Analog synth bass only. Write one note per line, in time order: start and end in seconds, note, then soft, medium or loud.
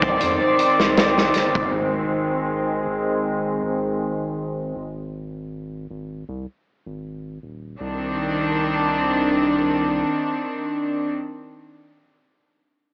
0.00 0.17 C2 medium
0.23 0.40 F2 loud
0.79 1.32 C2 medium
1.36 1.69 G1 medium
1.73 2.83 G#1 loud
2.87 3.59 G#1 medium
3.63 4.73 G#1 medium
4.76 5.87 G#1 loud
5.91 6.24 G#1 medium
6.29 6.46 C2 medium
6.86 7.39 G#1 medium
7.43 7.76 D#1 medium
7.80 10.04 C2 medium